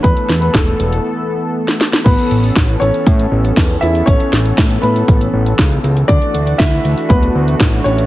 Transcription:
<<
  \new Staff \with { instrumentName = "Grand piano" } { \time 4/4 \key a \major \tempo 4 = 119 b'8. b'16 a'4 r2 | <b b'>4. <cis' cis''>2 <e' e''>8 | <cis' cis''>4. <b b'>2 r8 | <d' d''>4 <e' e''>4 <b b'>4. <cis' cis''>8 | }
  \new Staff \with { instrumentName = "Analog synth pad" } { \time 4/4 \key a \major << { <a b a'>1 | <b cis' a'>1~ | <b cis' a'>1 | <a d' fis'>1 | } \\ { e1 | e1~ | e1~ | e1 | } >> }
  \new Staff \with { instrumentName = "Analog synth bass" } { \clef bass \time 4/4 \key a \major e,8 e,8 e,,8 e,,8 r2 | a,,8 a,,8 a,,8 a,,8 a,8 a,,8 e,8 e,8 | a,,8 a,,8 a,8 a,8 a,,8 a,,8 cis,8 cis,8 | d,8 d,8 d,8 d,8 d,,8 d,8 a,,8 a,,8 | }
  \new DrumStaff \with { instrumentName = "Drums" } \drummode { \time 4/4 <hh bd>16 hh16 <hh sn>16 hh16 <hh bd sn>16 hh16 hh16 hh16 r4 r16 sn16 sn16 sn16 | <cymc hh bd>16 hh16 hh16 hh16 <hh bd sn>16 hh16 hh16 hh16 <hh bd>16 hh8 hh16 <hh bd sn>16 hh16 hh16 hh16 | <hh bd>16 hh16 <hh sn>16 hh16 <hh bd sn>16 hh16 hh16 hh16 <hh bd>16 hh8 hh16 <hh bd sn>16 hh16 hh16 hh16 | <hh bd>16 hh16 hh16 hh16 <hh bd sn>16 hh16 hh16 hh16 <hh bd>16 hh8 hh16 <hh bd sn>16 hh16 hh16 hh16 | }
>>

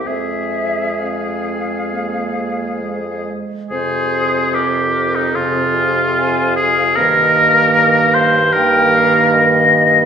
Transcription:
<<
  \new Staff \with { instrumentName = "Flute" } { \time 4/4 \key f \minor \tempo 4 = 74 e''4 f''2~ f''8 r8 | c''4 bes'4 aes'4 aes''8 f''8 | ees''4 ees''8 f''8 g''8 f''8 ees''4 | }
  \new Staff \with { instrumentName = "Oboe" } { \time 4/4 \key f \minor aes'2.~ aes'8 r8 | aes'4 g'8. ees'16 f'4. aes'8 | bes'4. c''8 bes'4. r8 | }
  \new Staff \with { instrumentName = "Clarinet" } { \time 4/4 \key f \minor c'4 c'4 bes4 aes4 | c'2 c'2 | bes2 bes2 | }
  \new Staff \with { instrumentName = "French horn" } { \clef bass \time 4/4 \key f \minor aes2.~ aes8 r8 | c2 c2 | ees2 ees2 | }
  \new Staff \with { instrumentName = "Bassoon" } { \clef bass \time 4/4 \key f \minor f,2.~ f,8 r8 | f,1 | g,1 | }
>>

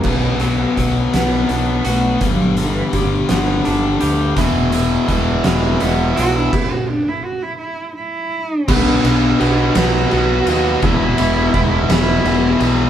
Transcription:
<<
  \new Staff \with { instrumentName = "Cello" } { \time 6/8 \key b \minor \tempo 4. = 56 r4. b8 b8 a8 | fis8 e8 d8 d4.~ | d8 r2 fis'16 d'16 | e'16 fis'16 d'16 e'16 fis'16 e'16 e'8 e'4 |
d'4. fis'4. | e'4. e'4 r8 | }
  \new Staff \with { instrumentName = "Clean electric guitar" } { \clef bass \time 6/8 \key b \minor b,8 fis8 fis8 b8 d'8 fis'8 | g,8 d8 g8 b8 d'8 g'8 | e,8 b,8 e8 gis8 b8 e'8 | r2. |
r2. | r2. | }
  \new Staff \with { instrumentName = "Overdriven electric guitar" } { \clef bass \time 6/8 \key b \minor <b, fis b>8 <b, fis b>8 <b, fis b>8 <b, fis b>8 <b, fis b>8 <b, fis b>8 | <g, d g>8 <g, d g>8 <g, d g>8 <g, d g>8 <g, d g>8 <g, d g>8 | <e, b, e>8 <e, b, e>8 <e, b, e>8 <e, b, e>8 <e, b, e>8 <e, b, e>8 | r2. |
<b, fis b>8 <b, fis b>8 <b, fis b>8 <b, fis b>8 <b, fis b>8 <b, fis b>8 | <e, b, e>8 <e, b, e>8 <e, b, e>8 <e, b, e>8 <e, b, e>8 <e, b, e>8 | }
  \new Staff \with { instrumentName = "Distorted electric guitar" } { \clef bass \time 6/8 \key b \minor r2. | r2. | <e, b, e>8 <e, b, e>8 <e, b, e>8 <e, b, e>8 <e, b, e>8 <e, b, e>8 | r2. |
<b, fis b>8 <b, fis b>8 <b, fis b>8 <b, fis b>8 <b, fis b>8 <b, fis b>8 | <e, b, e>8 <e, b, e>8 <e, b, e>8 <e, b, e>8 <e, b, e>8 <e, b, e>8 | }
  \new Staff \with { instrumentName = "Picked electric bass" } { \clef bass \time 6/8 \key b \minor b,,4 b,,8 b,,8 b,,8 b,,8 | g,,4 g,,8 g,,8 g,,8 d,8 | e,,4 e,,8 e,,8 e,,8 b,,8 | r2. |
b,,8 b,,8 b,,8 b,,8 b,,8 dis,8 | e,,8 e,,8 e,,8 e,,8 e,,8 b,,8 | }
  \new DrumStaff \with { instrumentName = "Drums" } \drummode { \time 6/8 <cymc bd>8 hh8 <hh bd>8 <hh sn>8 hh8 hh8 | <hh bd>8 hh8 <hh bd>8 <hh sn>8 hh8 hh8 | <hh bd>8 hh8 <hh bd>8 <hh sn>8 hh8 hh8 | <cymc bd>4. r4. |
<cymc bd>8 cymr8 cymr8 <cymr sn>8 cymr8 cymr8 | <bd cymr>8 cymr8 <bd cymr>8 <cymr sn>8 cymr8 cymr8 | }
>>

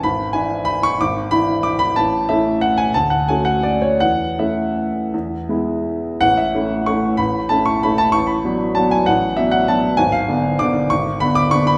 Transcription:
<<
  \new Staff \with { instrumentName = "Grand piano" } { \time 3/4 \key a \major \tempo 4 = 187 b''4 gis''4 b''8 cis'''8 | d'''4 b''4 d'''8 b''8 | a''4 e''4 fis''8 gis''8 | a''8 fis''8 gis''8 fis''8 d''8 cis''8 |
fis''4 e''2~ | e''2 r4 | fis''8 e''4. cis'''4 | b''4 a''8 cis'''8 b''8 a''8 |
cis'''8 b''4. a''8 gis''8 | fis''4 e''8 fis''8 a''4 | gis''8 eis''4. d'''4 | cis'''4 b''8 d'''8 cis'''8 b''8 | }
  \new Staff \with { instrumentName = "Grand piano" } { \time 3/4 \key a \major gis,,4 <e d' e'>2 | gis,,4 <e d' e'>2 | a,,4 <a cis' e'>2 | d,4 <a cis' fis'>2 |
e,4 <a cis' e'>2 | e,4 <gis b e'>2 | a,,4 <a cis' e'>4 <a cis' e'>4 | a,,4 <a cis' e'>4 <a cis' e'>4 |
a,,4 <fis b d'>4 <fis b d'>4 | a,,4 <fis b d'>4 <fis b d'>4 | gis,,4 <d b d'>4 <d b d'>4 | gis,,4 <d b d'>4 <d b d'>4 | }
>>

